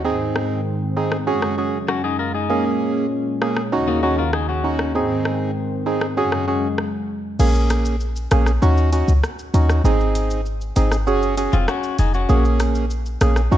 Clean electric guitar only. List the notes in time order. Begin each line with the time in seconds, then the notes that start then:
1.89 C#4 F#4
2.04 D#4 G#4
2.19 F4 A#4
2.35 D#4 G#4
3.88 A#3 D#4
4.03 C#4 F#4
4.18 F4 A#4
4.33 D#4 G#4
4.49 C#4 F#4
11.53 C4 F4
11.69 C#4 F#4
11.99 D#4 G#4
12.15 C#4 F#4